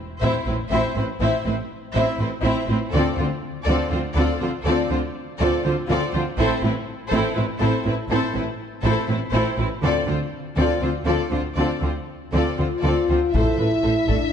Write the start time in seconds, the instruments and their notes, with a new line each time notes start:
0.21 double bass section A1, cello section A2, viola section C4 E4, violin section C5 E5
0.46 double bass section A1, cello section A2, viola section C4 E4, violin section B4 C5
0.71 double bass section A1, cello section A2, viola section C4 E4, violin section C5 E5
0.96 double bass section A1, cello section A2, viola section C4 E4, violin section B4 C5
1.20 double bass section A1, cello section A2, viola section C4 E4, violin section C5 E5
1.46 double bass section A1, cello section A2, viola section C4 E4, violin section B4 C5
1.94 double bass section A1, cello section A2, viola section C4 E4, violin section C5 E5
2.19 double bass section A1, cello section A2, viola section C4 E4, violin section B4 C5
2.43 double bass section A1, cello section A2, viola section C4 E4, violin section C5 E5
2.68 double bass section A1, cello section A2, viola section C4 E4, violin section B4 C5
2.92 double bass section D2, cello section D3, viola section C4 F4, violin section A4 D5
3.17 double bass section D2, cello section D3, viola section C4 F4, violin section F4 C5
3.65 double bass section D2, cello section D3, viola section C4 F4, violin section A4 D5
3.91 double bass section D2, cello section D3, viola section C4 F4, violin section F4 C5
4.16 double bass section D2, cello section D3, viola section C4 F4, violin section A4 D5
4.41 double bass section D2, cello section D3, viola section C4 F4, violin section F4 C5
4.64 double bass section D2, cello section D3, viola section C4 F4, violin section A4 D5
4.91 double bass section D2, cello section D3, viola section C4 F4, violin section F4 C5
5.40 double bass section D2, cello section D3, viola section C4 F4, violin section A4 D5
5.64 double bass section D2, cello section D3, viola section C4 F4, violin section F4 C5
5.89 double bass section D2, cello section D3, viola section C4 F4, violin section A4 D5
6.13 double bass section D2, cello section D3, viola section C4 F4, violin section F4 C5
6.38 double bass section A1, cello section A2, viola section C4 E4, violin section A4 C5
6.63 double bass section A1, cello section A2, viola section C4 E4, violin section E4 B4
7.11 double bass section A1, cello section A2, viola section C4 E4, violin section A4 C5
7.35 double bass section A1, cello section A2, viola section C4 E4, violin section E4 B4
7.60 double bass section A1, cello section A2, viola section C4 E4, violin section A4 C5
7.85 double bass section A1, cello section A2, viola section C4 E4, violin section E4 B4
8.10 double bass section A1, cello section A2, viola section C4 E4, violin section A4 C5
8.34 double bass section A1, cello section A2, viola section C4 E4, violin section E4 B4
8.83 double bass section A1, cello section A2, viola section C4 E4, violin section A4 C5
9.08 double bass section A1, cello section A2, viola section C4 E4, violin section E4 B4
9.32 double bass section A1, cello section A2, viola section C4 E4, violin section A4 C5
9.58 double bass section A1, cello section A2, viola section C4 E4, violin section E4 B4
9.83 double bass section D2, cello section D3, viola section C4 F4, violin section A4 D5
10.07 double bass section D2, cello section D3, viola section C4 F4, violin section F4 C5
10.56 double bass section D2, cello section D3, viola section C4 F4, violin section A4 D5
10.81 double bass section D2, cello section D3, viola section C4 F4, violin section F4 C5
11.06 double bass section D2, cello section D3, viola section C4 F4, violin section A4 D5
11.31 double bass section D2, cello section D3, viola section C4 F4, violin section F4 C5
11.56 double bass section D2, cello section D3, viola section C4 F4, violin section A4 D5
11.82 double bass section D2, cello section D3, viola section C4 F4, violin section F4 C5
12.32 double bass section D2, cello section D3, viola section C4 F4, violin section A4 D5
12.58 double bass section D2, cello section D3, viola section C4 F4, french horn section F4, violin section F4 C5
12.83 double bass section D2, cello section D3, viola section C4 F4, violin section A4 D5
13.09 double bass section D2, cello section D3, viola section C4 F4, violin section F4 C5
13.33 double bass section A1, cello section A2, french horn section E4, viola section A4, violin section C5 E5, taiko
13.58 double bass section A1, cello section A2, viola section A4, violin section B4
13.83 double bass section A1, cello section A2, viola section A4, violin section C5
14.08 double bass section A1, cello section A2, french horn section D4, violin section A4, viola section A4, taiko